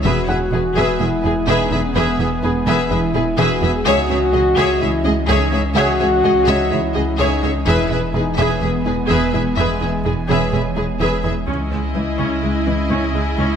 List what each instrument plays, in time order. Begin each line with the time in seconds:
0.04 sub bass E1, double bass section E1, cello section E2, analog synth pad E3 G#3 B3 G#5, synth arpeggio sound E3, french horn section F#4, viola section G#4, violin section B4 E5
0.28 double bass section E1, cello section E2, synth arpeggio sound E4, grand piano F#4 F#5, viola section G#4, violin section B4 E5
0.52 double bass section E1, cello section E2, synth arpeggio sound E4, violin section G#4 B4, viola section G#4
0.76 double bass section E1, cello section E2, synth arpeggio sound E3, viola section G#4, violin section B4 E5
0.99 double bass section E1, cello section E2, synth arpeggio sound G#3, french horn section E4, viola section G#4, violin section B4 E5
1.23 double bass section E1, cello section E2, synth arpeggio sound E4, violin section G#4 B4, viola section G#4
1.47 double bass section E1, cello section E2, synth arpeggio sound E3, french horn section D#4, viola section G#4, violin section B4 E5
1.71 double bass section E1, cello section E2, synth arpeggio sound E4, viola section G#4, violin section B4 E5
1.85 french horn section C#4
1.95 double bass section E1, cello section E2, synth arpeggio sound E3, french horn section B3, viola section G#4, violin section B4 E5
2.19 double bass section E1, cello section E2, synth arpeggio sound E4, viola section G#4, violin section B4 E5
2.43 double bass section E1, cello section E2, synth arpeggio sound E4, violin section G#4 B4, viola section G#4
2.67 double bass section E1, cello section E2, synth arpeggio sound E3, viola section G#4, violin section B4 E5
2.90 double bass section E1, cello section E2, synth arpeggio sound G#3, french horn section E4, viola section G#4, violin section B4 E5
3.15 double bass section E1, cello section E2, synth arpeggio sound E4, viola section G#4, violin section G#4 B4
3.38 double bass section E1, cello section E2, synth arpeggio sound E3, french horn section F#4, viola section G#4, grand piano G#4 G#5, violin section B4 E5
3.62 double bass section E1, cello section E2, synth arpeggio sound E4, viola section G#4, violin section B4 E5
3.75 french horn section G#4
3.85 sub bass C#2, double bass section C#2, cello section C#2, synth arpeggio sound C#3, analog synth pad E3 G#3 C#4 D#5, grand piano D#4 D#5, french horn section F#4, viola section G#4, violin section C#5 E5
4.09 cello section C#2, double bass section C#2, synth arpeggio sound C#4, viola section G#4, violin section C#5 E5
4.33 cello section C#2, double bass section C#2, synth arpeggio sound C#4, viola section G#4, violin section G#4 D#5
4.57 cello section C#2, double bass section C#2, synth arpeggio sound C#3, viola section G#4, violin section C#5 E5
4.81 cello section C#2, double bass section C#2, synth arpeggio sound E3, french horn section E4, viola section G#4, violin section C#5 E5
5.04 double bass section C#2, cello section C#2, synth arpeggio sound C#4, viola section G#4, violin section G#4 D#5
5.28 cello section C#2, double bass section C#2, synth arpeggio sound C#3, french horn section D#4, viola section G#4, violin section C#5 E5
5.52 cello section C#2, double bass section C#2, synth arpeggio sound C#4, viola section G#4, violin section C#5 E5
5.65 french horn section C#4
5.75 cello section C#2, double bass section C#2, synth arpeggio sound C#3, french horn section F#4, viola section G#4, violin section C#5 E5, grand piano F#5
6.00 double bass section C#2, cello section C#2, synth arpeggio sound C#4, viola section G#4, violin section C#5 E5
6.24 cello section C#2, double bass section C#2, synth arpeggio sound C#4, viola section G#4, violin section G#4 D#5
6.47 cello section C#2, double bass section C#2, synth arpeggio sound C#3, grand piano D#4 D#5, viola section G#4, violin section C#5 E5
6.70 double bass section C#2, cello section C#2, synth arpeggio sound E3, french horn section E4, viola section G#4, violin section C#5 E5
6.94 cello section C#2, double bass section C#2, synth arpeggio sound C#4, viola section G#4, violin section G#4 D#5
7.18 double bass section C#2, cello section C#2, synth arpeggio sound C#3, french horn section D#4, viola section G#4, violin section C#5 E5
7.42 cello section C#2, double bass section C#2, synth arpeggio sound C#4, viola section G#4, violin section C#5 E5
7.55 french horn section C#4
7.66 sub bass E1, double bass section E1, cello section E2, synth arpeggio sound E3, analog synth pad E3 G#3 B3 G#5, french horn section E4, viola section G#4, violin section B4 E5
7.91 double bass section E1, cello section E2, synth arpeggio sound E4, viola section G#4, violin section B4 E5
8.14 double bass section E1, cello section E2, grand piano G#3 G#4, french horn section D#4, synth arpeggio sound E4, viola section G#4, violin section G#4 B4
8.38 double bass section E1, cello section E2, synth arpeggio sound E3, viola section G#4, violin section B4 E5
8.51 french horn section C#4
8.62 double bass section E1, cello section E2, synth arpeggio sound G#3, french horn section B3, viola section G#4, violin section B4 E5
8.86 double bass section E1, cello section E2, synth arpeggio sound E4, viola section G#4, violin section G#4 B4
9.09 double bass section E1, cello section E2, synth arpeggio sound E3, viola section G#4, violin section B4 E5
9.33 double bass section E1, cello section E2, synth arpeggio sound E4, viola section G#4, violin section B4 E5
9.56 double bass section E1, cello section E2, synth arpeggio sound E3, french horn section G#3, viola section G#4, violin section B4 E5
9.81 double bass section E1, cello section E2, synth arpeggio sound E4, viola section G#4, violin section B4 E5
10.04 double bass section E1, cello section E2, synth arpeggio sound E4, viola section G#4, violin section G#4 B4
10.29 double bass section E1, cello section E2, synth arpeggio sound E3, viola section G#4, violin section B4 E5, grand piano C#5
10.53 double bass section E1, cello section E2, synth arpeggio sound G#3, viola section G#4, violin section B4 E5
10.76 double bass section E1, cello section E2, synth arpeggio sound E4, violin section G#4 B4, viola section G#4
11.00 double bass section E1, cello section E2, synth arpeggio sound E3, viola section G#4, violin section B4 E5
11.24 double bass section E1, cello section E2, synth arpeggio sound E4, viola section G#4, violin section B4 E5
11.48 cello section C#2, sub bass C#2, double bass section C#2, synth arpeggio sound C#3, analog synth pad G#3 C#4 E4 D#5, viola section C#4 E4, violin section G#4 D#5
11.71 cello section C#2, double bass section C#2, viola section G#3, synth arpeggio sound C#4
11.95 cello section C#2, double bass section C#2, viola section E3, synth arpeggio sound G#3, grand piano D#5
12.19 cello section C#2, double bass section C#2, synth arpeggio sound C#3, viola section C#4
12.43 cello section C#2, double bass section C#2, synth arpeggio sound G#3, viola section G#3
12.66 cello section C#2, double bass section C#2, viola section E3, synth arpeggio sound C#4, grand piano D#5
12.90 cello section C#2, double bass section C#2, synth arpeggio sound C#3, viola section C#4
13.14 cello section C#2, double bass section C#2, viola section G#3, synth arpeggio sound C#4
13.38 cello section C#2, double bass section C#2, synth arpeggio sound C#3, viola section C#4